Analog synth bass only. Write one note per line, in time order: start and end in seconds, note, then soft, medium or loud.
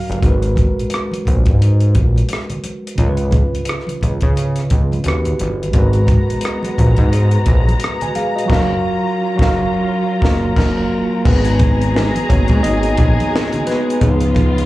0.10 0.20 G1 medium
0.23 0.68 G#1 loud
0.79 0.84 A#1 soft
1.27 1.49 A#1 medium
1.47 1.97 G#2 medium
1.96 2.23 A#1 medium
2.99 3.43 C#2 loud
3.54 3.60 C#2 soft
4.03 4.19 C#2 medium
4.23 4.62 C#3 medium
4.72 4.99 C#2 medium
5.06 5.33 D#2 loud
5.40 5.68 G1 medium
5.74 6.19 G#1 medium
6.30 6.35 A#1 soft
6.79 6.95 A#1 medium
6.98 7.38 G#2 loud
7.48 7.75 A#1 medium
8.50 8.75 F#1 loud
9.40 9.62 F#1 loud
10.23 10.47 F#1 loud
10.57 10.82 F#1 loud
11.26 12.12 G#1 loud
12.31 12.47 G#1 medium
12.50 12.61 G#2 loud
12.65 12.93 G#1 loud
12.99 13.15 A#1 loud
14.02 14.66 C#2 loud